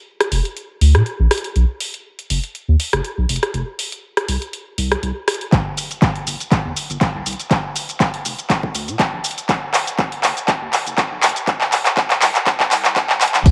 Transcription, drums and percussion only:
0.21 cross-stick, closed hi-hat
0.32 open hi-hat
0.45 closed hi-hat
0.57 closed hi-hat
0.81 open hi-hat
0.95 cross-stick, closed hi-hat
1.06 closed hi-hat
1.31 cross-stick, open hi-hat
1.38 closed hi-hat
1.44 closed hi-hat
1.56 closed hi-hat
1.80 open hi-hat
1.94 closed hi-hat
2.19 closed hi-hat
2.30 open hi-hat
2.44 closed hi-hat
2.55 closed hi-hat
2.80 open hi-hat
2.93 cross-stick, closed hi-hat
3.05 closed hi-hat
3.29 open hi-hat
3.36 closed hi-hat
3.43 cross-stick, closed hi-hat
3.54 closed hi-hat
3.79 open hi-hat
3.92 closed hi-hat
4.17 cross-stick, closed hi-hat
4.28 open hi-hat
4.42 closed hi-hat
4.53 closed hi-hat
4.78 open hi-hat
4.92 cross-stick, closed hi-hat
5.03 closed hi-hat
5.28 cross-stick, open hi-hat
5.34 closed hi-hat
5.41 closed hi-hat
5.52 kick, clap, closed hi-hat, shaker
5.77 open hi-hat, shaker
5.91 closed hi-hat, shaker
6.02 kick, clap, shaker
6.16 closed hi-hat
6.27 open hi-hat, shaker
6.40 closed hi-hat, shaker
6.52 kick, clap, closed hi-hat, shaker
6.76 open hi-hat, shaker
6.90 closed hi-hat, shaker
7.01 kick, clap, closed hi-hat, shaker
7.26 open hi-hat, shaker
7.33 closed hi-hat
7.40 closed hi-hat, shaker
7.51 kick, clap, closed hi-hat, shaker
7.76 open hi-hat, shaker
7.89 closed hi-hat, shaker
8.00 kick, clap, shaker
8.14 closed hi-hat
8.25 open hi-hat, shaker
8.39 closed hi-hat, shaker
8.50 kick, clap, closed hi-hat, shaker
8.63 kick
8.75 open hi-hat, shaker
8.88 closed hi-hat, shaker
9.00 kick, clap, closed hi-hat, shaker
9.24 open hi-hat, shaker
9.31 closed hi-hat
9.38 closed hi-hat, shaker
9.49 kick, clap, closed hi-hat, shaker
9.74 clap, open hi-hat, shaker
9.87 closed hi-hat, shaker
9.99 kick, clap, shaker
10.12 closed hi-hat
10.24 clap, open hi-hat, shaker
10.37 closed hi-hat, shaker
10.48 kick, clap, closed hi-hat, shaker
10.73 clap, open hi-hat, shaker
10.87 closed hi-hat, shaker
10.98 kick, clap, closed hi-hat, shaker
11.23 clap, open hi-hat, shaker
11.29 closed hi-hat
11.36 closed hi-hat, shaker
11.47 kick, clap, closed hi-hat, shaker
11.61 clap
11.72 clap, open hi-hat, shaker
11.86 clap, closed hi-hat, shaker
11.97 kick, clap, shaker
12.10 clap, closed hi-hat
12.22 clap, open hi-hat, shaker
12.35 clap, closed hi-hat, shaker
12.47 kick, clap, closed hi-hat, shaker
12.60 kick, clap
12.71 clap, open hi-hat, shaker
12.85 clap, closed hi-hat, shaker
12.96 kick, clap, closed hi-hat, shaker
13.10 clap
13.21 clap, open hi-hat, shaker
13.28 closed hi-hat
13.34 clap, closed hi-hat, shaker
13.46 kick, closed hi-hat, crash, shaker

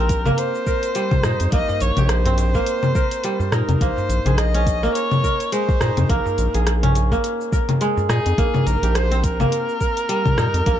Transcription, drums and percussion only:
0.09 kick, closed hi-hat, cabasa
0.26 darbuka tek, low conga, cabasa
0.38 closed hi-hat, cabasa
0.55 cabasa
0.67 kick, cabasa
0.83 closed hi-hat, cabasa
0.95 closed hi-hat, cabasa
1.11 kick, low conga, cabasa
1.23 cross-stick, darbuka tek, darbuka dum, cabasa
1.40 closed hi-hat, cabasa
1.52 kick, closed hi-hat, cabasa
1.69 darbuka ka, darbuka tek, darbuka dum, cabasa
1.81 closed hi-hat, cabasa
1.97 closed hi-hat, low conga, cabasa
2.09 cross-stick, closed hi-hat, cabasa
2.25 closed hi-hat, darbuka dum, cabasa
2.38 closed hi-hat, darbuka tek, cabasa
2.54 kick, darbuka tek, cabasa
2.66 closed hi-hat, cabasa
2.83 low conga, cabasa
2.95 kick, cabasa
3.11 closed hi-hat, cabasa
3.24 closed hi-hat, cabasa
3.40 darbuka dum, cabasa
3.52 cross-stick, cabasa
3.69 closed hi-hat, low conga, cabasa
3.81 kick, closed hi-hat, cabasa
3.97 darbuka ka, darbuka tek, darbuka dum, cabasa
4.10 closed hi-hat, cabasa
4.26 closed hi-hat, low conga, cabasa
4.38 cross-stick, closed hi-hat, cabasa
4.54 closed hi-hat, cabasa
4.67 kick, closed hi-hat, cabasa
4.83 darbuka tek, cabasa
4.95 closed hi-hat, cabasa
5.12 low conga, cabasa
5.24 kick, cabasa
5.40 closed hi-hat, cabasa
5.52 closed hi-hat, cabasa
5.69 kick, cabasa
5.81 cross-stick, darbuka tek, darbuka dum, cabasa
5.97 closed hi-hat, low conga, cabasa
6.10 kick, closed hi-hat, cabasa
6.26 darbuka ka, darbuka tek, darbuka dum, cabasa
6.38 closed hi-hat, cabasa
6.54 closed hi-hat, cabasa
6.67 cross-stick, closed hi-hat, cabasa
6.83 closed hi-hat, low conga, darbuka dum, cabasa
6.95 closed hi-hat, darbuka tek, cabasa
7.12 kick, darbuka tek, cabasa
7.24 closed hi-hat, cabasa
7.41 cabasa
7.52 kick, cabasa
7.69 closed hi-hat, low conga, cabasa
7.81 closed hi-hat, cabasa
7.97 darbuka dum, cabasa
8.10 cross-stick, cabasa
8.26 closed hi-hat, cabasa
8.38 kick, closed hi-hat, cabasa
8.54 darbuka ka, darbuka tek, low conga, darbuka dum, cabasa
8.67 closed hi-hat, cabasa
8.83 closed hi-hat, cabasa
8.95 cross-stick, closed hi-hat, cabasa
9.12 closed hi-hat, cabasa
9.24 kick, closed hi-hat, cabasa
9.40 darbuka tek, low conga, cabasa
9.52 closed hi-hat, cabasa
9.69 cabasa
9.81 kick, cabasa
9.97 closed hi-hat, cabasa
10.09 closed hi-hat, cabasa
10.26 kick, low conga, cabasa
10.37 cross-stick, darbuka tek, darbuka dum, cabasa
10.54 closed hi-hat, cabasa
10.66 kick, closed hi-hat, cabasa

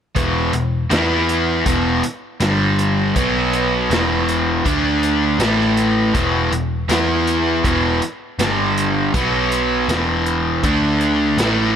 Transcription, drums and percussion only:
0.16 kick, closed hi-hat
0.53 closed hi-hat
0.91 snare, closed hi-hat
1.29 closed hi-hat
1.66 kick, closed hi-hat
2.03 closed hi-hat
2.40 snare, closed hi-hat
2.79 closed hi-hat
3.16 kick, closed hi-hat
3.53 closed hi-hat
3.91 snare, closed hi-hat
4.29 closed hi-hat
4.66 kick, closed hi-hat
5.03 closed hi-hat
5.40 snare, closed hi-hat
5.61 snare
5.77 closed hi-hat
6.15 kick, closed hi-hat
6.52 closed hi-hat
6.89 snare, closed hi-hat
7.27 closed hi-hat
7.64 kick, closed hi-hat
8.02 closed hi-hat
8.39 snare, closed hi-hat
8.77 closed hi-hat
9.14 kick, closed hi-hat
9.52 closed hi-hat
9.89 snare, closed hi-hat
10.26 closed hi-hat
10.63 kick, closed hi-hat
11.01 closed hi-hat
11.38 snare, closed hi-hat

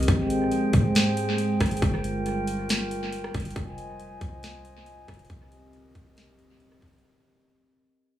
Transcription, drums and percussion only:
0.03 closed hi-hat
0.08 kick, closed hi-hat
0.30 closed hi-hat
0.52 closed hi-hat
0.73 kick, closed hi-hat
0.95 snare, closed hi-hat
1.17 closed hi-hat
1.38 closed hi-hat
1.60 kick, cross-stick, closed hi-hat
1.66 closed hi-hat
1.71 closed hi-hat
1.77 closed hi-hat
1.82 kick, closed hi-hat
2.04 closed hi-hat
2.26 closed hi-hat
2.47 closed hi-hat
2.69 snare, closed hi-hat
2.91 closed hi-hat
3.12 closed hi-hat
3.24 cross-stick
3.34 kick, closed hi-hat
3.40 closed hi-hat
3.45 closed hi-hat
3.50 closed hi-hat
3.56 kick, closed hi-hat
3.78 closed hi-hat
4.00 closed hi-hat
4.21 kick, closed hi-hat
4.43 snare, closed hi-hat
4.65 closed hi-hat
4.86 closed hi-hat
5.08 kick, cross-stick, closed hi-hat
5.14 closed hi-hat
5.19 closed hi-hat
5.25 closed hi-hat
5.30 kick, closed hi-hat
5.52 closed hi-hat
5.73 closed hi-hat
5.95 kick, closed hi-hat
6.17 snare, closed hi-hat
6.39 closed hi-hat
6.60 closed hi-hat
6.72 cross-stick
6.82 kick, closed hi-hat
6.87 closed hi-hat
6.93 closed hi-hat
6.98 closed hi-hat

